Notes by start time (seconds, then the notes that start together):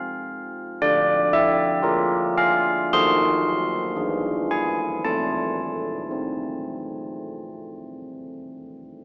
Already playing: F3 C4 F5
0.82 D3 D5
1.33 E5
1.83 F4 A#4
2.38 F5
2.93 D#3 F#4 A4 C6
3.96 E3 D4 G#4
4.51 G#5
5.04 A3 A5
6.11 C4